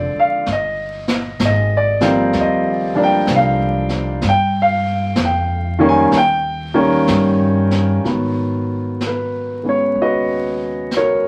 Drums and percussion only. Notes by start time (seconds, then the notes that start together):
0.46 brush sweep, snare
1.08 snare
1.40 snare, hi-hat pedal
2.01 snare
2.33 brush sweep, snare
3.27 snare, hi-hat pedal
3.89 snare
4.21 brush sweep, snare
5.16 snare, hi-hat pedal
6.12 brush sweep, snare
7.08 snare, hi-hat pedal
7.71 snare
8.05 brush sweep, snare
9.01 brush sweep, snare, hi-hat pedal
9.96 brush sweep
10.91 brush sweep, snare, hi-hat pedal